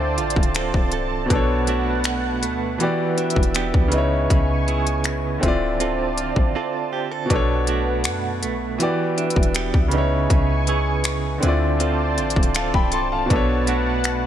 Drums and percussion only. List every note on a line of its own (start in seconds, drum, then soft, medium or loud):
0.18 closed hi-hat medium
0.30 closed hi-hat medium
0.36 kick medium
0.43 closed hi-hat medium
0.55 finger snap loud
0.55 closed hi-hat medium
0.74 kick medium
0.92 closed hi-hat medium
1.30 kick loud
1.30 closed hi-hat medium
1.67 closed hi-hat medium
2.04 finger snap loud
2.04 closed hi-hat medium
2.43 closed hi-hat medium
2.80 closed hi-hat medium
3.18 closed hi-hat medium
3.30 closed hi-hat medium
3.36 kick medium
3.43 closed hi-hat medium
3.55 finger snap medium
3.55 closed hi-hat medium
3.74 kick loud
3.92 closed hi-hat medium
4.30 kick loud
4.30 closed hi-hat medium
4.68 closed hi-hat soft
4.87 closed hi-hat medium
5.04 finger snap loud
5.04 closed hi-hat medium
5.43 kick medium
5.43 closed hi-hat medium
5.80 closed hi-hat medium
6.18 closed hi-hat medium
6.36 kick medium
7.30 kick loud
7.30 closed hi-hat medium
7.67 closed hi-hat medium
8.04 finger snap loud
8.04 closed hi-hat medium
8.43 closed hi-hat medium
8.80 closed hi-hat medium
9.18 closed hi-hat medium
9.30 closed hi-hat medium
9.36 kick medium
9.43 closed hi-hat medium
9.55 finger snap loud
9.55 closed hi-hat medium
9.74 kick medium
9.91 closed hi-hat medium
10.30 kick loud
10.30 closed hi-hat medium
10.67 closed hi-hat medium
11.04 finger snap loud
11.04 closed hi-hat medium
11.43 closed hi-hat medium
11.80 closed hi-hat medium
12.18 closed hi-hat medium
12.30 closed hi-hat medium
12.36 kick medium
12.43 closed hi-hat medium
12.55 finger snap loud
12.55 closed hi-hat medium
12.74 kick loud
12.92 closed hi-hat medium
13.30 kick loud
13.30 closed hi-hat medium
13.67 closed hi-hat medium
14.04 finger snap loud
14.04 closed hi-hat medium